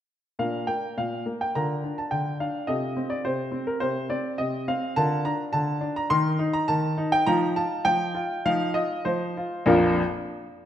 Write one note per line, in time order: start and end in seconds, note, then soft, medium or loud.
0.39 0.67 A#2 soft
0.39 1.51 D4 soft
0.39 1.51 A#4 soft
0.39 0.65 F5 medium
0.67 0.96 A#3 soft
0.67 0.97 G5 medium
0.97 1.25 A#2 soft
0.97 1.23 F5 medium
1.26 1.54 A#3 soft
1.41 1.55 G5 medium
1.55 1.83 D3 medium
1.55 2.65 F4 soft
1.55 2.65 A#4 soft
1.55 1.94 A#5 medium
1.84 2.11 D4 soft
1.98 2.12 A5 medium
2.11 2.40 D3 soft
2.11 2.37 G5 medium
2.40 2.68 D4 soft
2.40 2.69 F5 medium
2.67 2.96 C3 medium
2.67 4.92 F4 soft
2.67 4.92 A4 soft
2.67 3.11 D#5 medium
2.97 3.24 C4 soft
3.10 3.25 D5 medium
3.25 3.53 C3 soft
3.25 3.64 C5 medium
3.52 3.80 C4 soft
3.67 3.82 A#4 medium
3.80 4.09 C3 medium
3.80 4.07 C5 medium
4.09 4.38 C4 medium
4.09 4.36 D5 medium
4.38 4.66 C3 medium
4.38 4.64 D#5 medium
4.68 4.95 C4 medium
4.68 4.96 F5 medium
4.96 5.24 D3 medium
4.96 6.07 F4 soft
4.96 6.07 A#4 soft
4.96 5.25 A5 loud
5.25 5.53 D4 medium
5.25 5.42 A#5 medium
5.53 5.81 D3 medium
5.53 5.92 A5 medium
5.81 6.09 D4 medium
5.96 6.11 A#5 medium
6.10 6.38 D#3 medium
6.10 6.37 D#4 medium
6.10 7.23 A#4 medium
6.10 6.54 C6 loud
6.39 6.67 D#4 medium
6.53 6.68 A#5 medium
6.68 6.97 D#3 medium
6.68 7.09 A5 medium
6.98 7.26 D#4 medium
7.12 7.27 G5 medium
7.27 7.56 F3 medium
7.27 8.42 D#4 medium
7.27 7.55 F4 medium
7.27 7.53 A#5 loud
7.56 7.86 F4 medium
7.56 7.86 A5 medium
7.85 8.15 F3 medium
7.85 8.45 G5 loud
8.15 8.44 F4 medium
8.46 8.75 F3 medium
8.46 9.64 D#4 medium
8.46 8.73 F4 medium
8.46 8.73 F5 loud
8.74 9.04 F4 medium
8.74 9.05 D#5 medium
9.05 9.36 F3 medium
9.05 9.67 C5 medium
9.37 9.66 F4 medium
9.66 10.00 A#1 loud
9.66 10.01 F2 medium
9.66 10.01 F3 medium
9.66 10.01 A#3 medium
9.66 10.01 D4 medium
9.66 10.01 F4 medium
9.66 10.01 A#4 medium